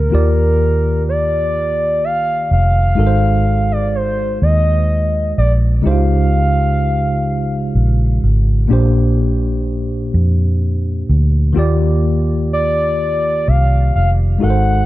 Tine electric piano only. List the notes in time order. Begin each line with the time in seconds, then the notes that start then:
0.10 D#3 A#3 F4 G4
0.15 D5
2.95 G#3 D#4 F#4 A4
3.00 A#4
3.07 C5
5.82 C#3 G#3 D#4 E4 G4
5.87 C5
5.91 F4
8.68 A#2 A#3 D4 G4
8.73 C5
11.53 D#3 A#3 F4
11.57 G4 D5
14.38 G#3 D#4 F#4
14.43 A4 A#4
14.50 C5